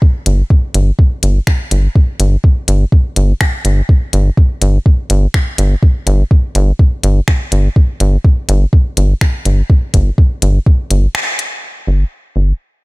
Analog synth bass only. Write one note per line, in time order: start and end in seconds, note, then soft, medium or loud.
0.26 0.43 G1 loud
0.74 0.91 G1 loud
1.23 1.40 G1 medium
1.71 1.88 G1 medium
2.20 2.36 G1 loud
2.68 2.85 G1 loud
3.16 3.33 G1 medium
3.65 3.82 G1 medium
4.13 4.30 G1 loud
4.62 4.78 G1 loud
5.10 5.27 G1 medium
5.58 5.75 G1 medium
6.07 6.24 G1 loud
6.55 6.72 G1 loud
7.03 7.20 G1 medium
7.52 7.69 G1 medium
8.00 8.17 G1 loud
8.49 8.66 G1 loud
8.97 9.14 G1 medium
9.45 9.62 G1 medium
9.94 10.11 G1 loud
10.42 10.59 G1 loud
10.90 11.07 G1 medium
11.87 12.04 G1 loud
12.36 12.53 G1 loud